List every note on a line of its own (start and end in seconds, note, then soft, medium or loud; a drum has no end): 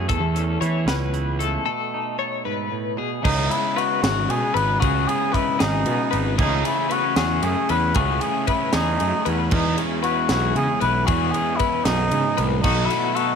0.00 1.39 A3 medium
0.09 0.20 E2 medium
0.09 1.67 E2 medium
0.09 0.61 A4 medium
0.09 kick loud
0.09 closed hi-hat medium
0.20 0.56 E2 medium
0.34 0.85 C#4 medium
0.34 closed hi-hat medium
0.61 0.85 E3 medium
0.61 1.12 E4 medium
0.61 0.87 C#5 medium
0.61 closed hi-hat medium
0.86 1.57 C#2 medium
0.86 1.63 C#4 medium
0.86 1.39 B4 medium
0.86 snare loud
0.86 closed hi-hat medium
1.14 1.67 E4 medium
1.14 closed hi-hat medium
1.39 3.24 A3 medium
1.39 1.64 A4 medium
1.39 closed hi-hat medium
1.65 2.96 B2 medium
1.65 2.18 A4 medium
1.94 3.22 D#4 medium
2.19 3.21 A4 medium
2.19 2.45 C#5 medium
2.45 2.71 G#2 medium
2.45 2.98 B4 medium
2.72 2.98 A2 medium
2.97 3.22 B2 medium
2.97 3.23 G#4 medium
3.22 3.48 C#2 loud
3.22 4.81 C#3 medium
3.22 4.79 C#3 medium
3.22 4.80 G#3 medium
3.22 4.81 C#4 medium
3.22 3.53 D#4 medium
3.22 4.82 E4 medium
3.22 3.76 G#4 medium
3.22 kick loud
3.22 crash loud
3.50 4.28 B3 medium
3.50 3.79 E4 medium
3.50 ride medium
3.76 4.31 D#4 medium
3.76 4.02 F#4 loud
3.76 4.02 B4 medium
3.76 ride medium
4.02 4.26 G#1 medium
4.02 4.31 F#4 medium
4.02 4.54 G#4 medium
4.02 snare loud
4.02 ride loud
4.28 4.41 B2 medium
4.28 4.42 A3 medium
4.28 4.56 G#4 loud
4.28 ride medium
4.42 4.82 B3 medium
4.54 4.78 G#1 medium
4.54 4.79 D#4 medium
4.54 4.80 B4 medium
4.54 4.81 B4 loud
4.54 ride medium
4.80 5.05 C#2 loud
4.80 6.35 C#3 medium
4.80 6.38 C#3 medium
4.80 6.37 G#3 medium
4.80 6.38 C#4 medium
4.80 6.39 E4 medium
4.80 5.09 F#4 loud
4.80 5.31 G#4 medium
4.80 kick loud
4.80 ride medium
5.07 5.85 B3 medium
5.07 5.35 G#4 loud
5.07 ride medium
5.32 5.61 D#4 medium
5.32 5.62 E4 medium
5.32 5.59 B4 medium
5.32 kick medium
5.32 ride medium
5.59 5.84 G#1 medium
5.59 6.19 D#4 medium
5.59 6.10 G#4 medium
5.59 snare loud
5.59 ride loud
5.86 5.98 B2 medium
5.86 6.35 B3 medium
5.86 ride medium
6.11 6.36 G#1 medium
6.11 6.35 D#4 medium
6.11 6.38 B4 medium
6.11 ride medium
6.36 6.62 C#2 loud
6.36 7.92 C#3 medium
6.36 9.89 E3 medium
6.36 7.93 A3 medium
6.36 7.95 C#4 medium
6.36 7.97 E4 loud
6.36 6.89 G#4 medium
6.36 kick loud
6.36 crash medium
6.40 6.64 A3 medium
6.40 6.91 C#4 medium
6.40 6.64 D#4 medium
6.40 8.27 G#4 medium
6.65 7.43 A3 medium
6.65 6.93 E4 medium
6.65 ride medium
6.90 7.04 B3 medium
6.90 7.17 F#4 loud
6.90 7.16 B4 medium
6.90 ride medium
7.04 7.17 C#4 medium
7.16 7.40 E2 loud
7.16 7.31 B3 medium
7.16 7.45 F#4 medium
7.16 7.69 G#4 medium
7.16 snare loud
7.16 ride loud
7.31 7.70 C#4 medium
7.43 7.54 F#2 medium
7.43 8.22 A3 medium
7.43 7.72 G#4 medium
7.43 ride medium
7.69 7.93 E2 medium
7.69 8.50 C#4 medium
7.69 7.95 B4 medium
7.69 7.97 B4 loud
7.69 ride medium
7.94 8.18 C#2 loud
7.94 9.49 C#3 medium
7.94 9.48 C#3 medium
7.94 9.50 A3 medium
7.94 9.51 C#4 medium
7.94 9.52 E4 loud
7.94 8.22 F#4 medium
7.94 8.47 G#4 medium
7.94 kick loud
7.94 ride medium
8.20 9.00 A3 medium
8.20 8.47 G#4 medium
8.20 ride medium
8.47 8.62 B3 medium
8.47 8.75 E4 medium
8.47 8.73 B4 medium
8.47 kick medium
8.47 ride medium
8.62 8.74 C#4 medium
8.73 8.96 E2 medium
8.73 9.27 C#4 medium
8.73 9.32 D#4 medium
8.73 9.25 G#4 medium
8.73 snare loud
8.73 ride loud
9.00 9.12 F#2 medium
9.00 9.52 A3 medium
9.00 ride medium
9.25 9.49 E2 medium
9.25 9.79 C#4 medium
9.25 9.52 B4 medium
9.25 ride medium
9.50 9.75 E2 loud
9.50 11.07 E2 medium
9.50 11.05 E3 medium
9.50 11.06 G#3 medium
9.50 11.09 B3 medium
9.50 9.76 D#4 medium
9.50 11.06 E4 medium
9.50 10.02 G#4 medium
9.50 kick loud
9.50 crash medium
9.78 10.56 C#4 medium
9.78 ride medium
10.03 10.30 E4 medium
10.03 10.28 F#4 medium
10.03 10.28 B4 medium
10.03 ride medium
10.28 10.52 B1 medium
10.28 10.82 E4 medium
10.28 10.55 F#4 medium
10.28 10.80 G#4 medium
10.28 snare loud
10.28 ride medium
10.55 10.67 C#3 medium
10.55 11.06 C#4 medium
10.55 10.80 G#4 medium
10.55 ride medium
10.80 11.05 B1 medium
10.80 11.06 E4 medium
10.80 11.06 B4 medium
10.80 11.07 B4 loud
10.80 ride medium
11.06 11.31 E2 loud
11.06 11.86 E2 medium
11.06 12.63 E3 medium
11.06 12.63 G#3 medium
11.06 12.65 B3 medium
11.06 12.63 E4 medium
11.06 11.32 F#4 medium
11.06 11.59 G#4 medium
11.06 kick loud
11.06 ride loud
11.31 11.57 G#4 medium
11.31 ride medium
11.35 11.59 C#4 medium
11.56 11.86 E4 loud
11.56 11.86 B4 medium
11.56 ride medium
11.60 12.61 C#4 medium
11.60 kick medium
11.84 12.09 B1 medium
11.84 12.12 F#2 medium
11.84 12.44 D#4 medium
11.84 12.37 G#4 medium
11.84 snare loud
11.84 ride loud
12.11 12.38 G#2 medium
12.11 12.23 C#3 medium
12.11 ride medium
12.37 12.61 C2 medium
12.37 12.65 A2 medium
12.37 12.63 B4 medium
12.37 ride medium
12.61 12.87 B1 loud
12.61 13.35 B2 medium
12.61 13.35 D#3 medium
12.61 12.87 D#4 medium
12.61 13.15 F#4 medium
12.61 kick loud
12.61 crash loud
12.66 13.35 F#3 loud
12.66 13.35 B3 loud
12.66 13.35 D#4 medium
12.66 13.35 A4 loud
12.86 13.17 E4 medium
12.90 13.35 A3 medium
12.90 ride medium
13.15 13.35 F#4 medium
13.15 13.35 A4 medium
13.15 ride medium
13.20 13.35 D#4 medium